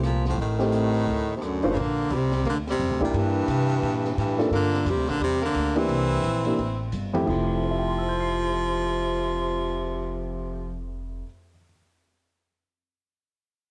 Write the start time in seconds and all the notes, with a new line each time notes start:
Already playing: C2
0.03 A#2 F3, cross-stick, closed hi-hat
0.25 F3, snare, open hi-hat
0.29 A2
0.38 A1 A2 D#3, kick, open hi-hat
0.59 A3 C4 D#4 G4, snare
0.72 closed hi-hat
0.94 open hi-hat
1.07 D2, kick, open hi-hat
1.36 D#2 C3
1.42 F#2 D3, cross-stick, closed hi-hat
1.62 F#1 G2 A#3 D4 F4 C5, open hi-hat
1.71 C#3 A3
1.76 A#1 A#3, kick, ride
1.81 D3
2.10 C2 G3, kick, hi-hat pedal, ride
2.15 C3
2.32 snare, ride
2.44 D2 A#3, kick, ride
2.49 D3
2.67 C3 G3, snare, ride
2.79 F2, kick, hi-hat pedal, ride
2.90 D2
3.01 A#1 A#2 G3 A#3 D4 E4 G4, kick, ride
3.13 G2 E3, kick, ride
3.47 C3, kick, hi-hat pedal, ride
3.69 ride
3.82 A#2, kick, ride
4.04 snare
4.17 G2 A2 E3, kick, hi-hat pedal, ride
4.38 A#3 D4 F4 A4, snare, ride
4.51 G2 A#3, kick, ride
4.55 D3
4.73 snare
4.85 F2 G3, kick, hi-hat pedal, ride
4.90 C3
4.96 D2
5.07 A#1 D3 A#3, snare, ride
5.20 E2 G3, kick, ride
5.24 C3
5.42 D3 A#3, snare
5.54 D2, kick, hi-hat pedal, ride
5.75 E3 A#3 C4 D4 E4 G4, ride
5.88 C2, kick, ride
6.23 A#1, kick, hi-hat pedal, ride
6.45 A#3 D4 E4 G4, ride
6.58 A1, kick, ride
6.92 G1, kick, hi-hat pedal, ride
7.14 F2 A3 C4 E4 G4, ride
7.25 F1 F2 C3 F3 A3 E4 G4, kick, crash
7.29 F3
7.48 cymbal swell
7.63 C5
7.71 E5
7.79 G5
7.88 C6
7.98 E6
8.09 G6
8.20 C7